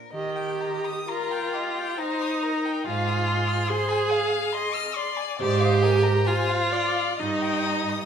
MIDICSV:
0, 0, Header, 1, 5, 480
1, 0, Start_track
1, 0, Key_signature, -3, "major"
1, 0, Tempo, 952381
1, 65, Time_signature, 3, 2, 24, 8
1, 542, Tempo, 900901
1, 1022, Tempo, 849858
1, 2462, Tempo, 872093
1, 3422, Tempo, 936037
1, 4336, End_track
2, 0, Start_track
2, 0, Title_t, "Violin"
2, 0, Program_c, 0, 40
2, 0, Note_on_c, 0, 70, 61
2, 61, Note_off_c, 0, 70, 0
2, 65, Note_on_c, 0, 75, 76
2, 182, Note_on_c, 0, 79, 65
2, 190, Note_off_c, 0, 75, 0
2, 305, Note_on_c, 0, 82, 69
2, 312, Note_off_c, 0, 79, 0
2, 427, Note_on_c, 0, 87, 71
2, 435, Note_off_c, 0, 82, 0
2, 547, Note_on_c, 0, 82, 78
2, 555, Note_off_c, 0, 87, 0
2, 669, Note_on_c, 0, 79, 68
2, 677, Note_off_c, 0, 82, 0
2, 794, Note_on_c, 0, 75, 65
2, 802, Note_off_c, 0, 79, 0
2, 907, Note_on_c, 0, 79, 78
2, 915, Note_off_c, 0, 75, 0
2, 1028, Note_on_c, 0, 82, 80
2, 1036, Note_off_c, 0, 79, 0
2, 1156, Note_on_c, 0, 87, 73
2, 1165, Note_off_c, 0, 82, 0
2, 1280, Note_on_c, 0, 82, 75
2, 1289, Note_off_c, 0, 87, 0
2, 1407, Note_on_c, 0, 79, 70
2, 1416, Note_off_c, 0, 82, 0
2, 1519, Note_off_c, 0, 79, 0
2, 1523, Note_on_c, 0, 77, 88
2, 1643, Note_on_c, 0, 80, 77
2, 1652, Note_off_c, 0, 77, 0
2, 1760, Note_on_c, 0, 84, 73
2, 1768, Note_off_c, 0, 80, 0
2, 1878, Note_on_c, 0, 89, 76
2, 1886, Note_off_c, 0, 84, 0
2, 1992, Note_on_c, 0, 84, 87
2, 2001, Note_off_c, 0, 89, 0
2, 2103, Note_on_c, 0, 80, 78
2, 2111, Note_off_c, 0, 84, 0
2, 2231, Note_on_c, 0, 77, 73
2, 2239, Note_off_c, 0, 80, 0
2, 2339, Note_on_c, 0, 80, 81
2, 2347, Note_off_c, 0, 77, 0
2, 2462, Note_on_c, 0, 84, 90
2, 2470, Note_off_c, 0, 80, 0
2, 2583, Note_on_c, 0, 89, 87
2, 2591, Note_off_c, 0, 84, 0
2, 2697, Note_on_c, 0, 84, 83
2, 2705, Note_off_c, 0, 89, 0
2, 2814, Note_on_c, 0, 80, 75
2, 2823, Note_off_c, 0, 84, 0
2, 2935, Note_off_c, 0, 80, 0
2, 2939, Note_on_c, 0, 74, 102
2, 3055, Note_on_c, 0, 77, 85
2, 3063, Note_off_c, 0, 74, 0
2, 3177, Note_on_c, 0, 80, 92
2, 3185, Note_off_c, 0, 77, 0
2, 3293, Note_on_c, 0, 82, 87
2, 3301, Note_off_c, 0, 80, 0
2, 3421, Note_on_c, 0, 80, 91
2, 3428, Note_off_c, 0, 82, 0
2, 3536, Note_on_c, 0, 77, 85
2, 3544, Note_off_c, 0, 80, 0
2, 3654, Note_on_c, 0, 74, 76
2, 3662, Note_off_c, 0, 77, 0
2, 3775, Note_on_c, 0, 77, 79
2, 3783, Note_off_c, 0, 74, 0
2, 3882, Note_off_c, 0, 77, 0
2, 3885, Note_on_c, 0, 75, 82
2, 4011, Note_on_c, 0, 79, 79
2, 4019, Note_off_c, 0, 75, 0
2, 4137, Note_on_c, 0, 82, 79
2, 4145, Note_off_c, 0, 79, 0
2, 4256, Note_on_c, 0, 87, 76
2, 4263, Note_off_c, 0, 82, 0
2, 4336, Note_off_c, 0, 87, 0
2, 4336, End_track
3, 0, Start_track
3, 0, Title_t, "Violin"
3, 0, Program_c, 1, 40
3, 543, Note_on_c, 1, 70, 88
3, 785, Note_on_c, 1, 67, 73
3, 793, Note_off_c, 1, 70, 0
3, 1022, Note_off_c, 1, 67, 0
3, 1027, Note_on_c, 1, 72, 93
3, 1277, Note_on_c, 1, 70, 75
3, 1285, Note_off_c, 1, 72, 0
3, 1511, Note_off_c, 1, 70, 0
3, 1514, Note_on_c, 1, 68, 92
3, 1992, Note_on_c, 1, 72, 96
3, 2001, Note_off_c, 1, 68, 0
3, 2228, Note_on_c, 1, 77, 99
3, 2236, Note_off_c, 1, 72, 0
3, 2471, Note_on_c, 1, 75, 107
3, 2480, Note_off_c, 1, 77, 0
3, 2703, Note_on_c, 1, 74, 110
3, 2712, Note_off_c, 1, 75, 0
3, 2943, Note_on_c, 1, 72, 100
3, 2951, Note_off_c, 1, 74, 0
3, 3180, Note_on_c, 1, 70, 85
3, 3188, Note_off_c, 1, 72, 0
3, 3420, Note_off_c, 1, 70, 0
3, 3424, Note_on_c, 1, 72, 104
3, 3656, Note_on_c, 1, 74, 104
3, 3664, Note_off_c, 1, 72, 0
3, 3897, Note_on_c, 1, 75, 106
3, 3904, Note_off_c, 1, 74, 0
3, 4336, Note_off_c, 1, 75, 0
3, 4336, End_track
4, 0, Start_track
4, 0, Title_t, "Viola"
4, 0, Program_c, 2, 41
4, 65, Note_on_c, 2, 67, 94
4, 522, Note_off_c, 2, 67, 0
4, 545, Note_on_c, 2, 65, 108
4, 1027, Note_on_c, 2, 63, 112
4, 1035, Note_off_c, 2, 65, 0
4, 1514, Note_on_c, 2, 65, 115
4, 1523, Note_off_c, 2, 63, 0
4, 1994, Note_on_c, 2, 68, 125
4, 2003, Note_off_c, 2, 65, 0
4, 2702, Note_off_c, 2, 68, 0
4, 2939, Note_on_c, 2, 67, 127
4, 3423, Note_on_c, 2, 65, 127
4, 3431, Note_off_c, 2, 67, 0
4, 3896, Note_on_c, 2, 63, 109
4, 3904, Note_off_c, 2, 65, 0
4, 4336, Note_off_c, 2, 63, 0
4, 4336, End_track
5, 0, Start_track
5, 0, Title_t, "Cello"
5, 0, Program_c, 3, 42
5, 64, Note_on_c, 3, 51, 79
5, 464, Note_off_c, 3, 51, 0
5, 1514, Note_on_c, 3, 44, 91
5, 1910, Note_off_c, 3, 44, 0
5, 2937, Note_on_c, 3, 44, 112
5, 3339, Note_off_c, 3, 44, 0
5, 3896, Note_on_c, 3, 43, 92
5, 4300, Note_off_c, 3, 43, 0
5, 4336, End_track
0, 0, End_of_file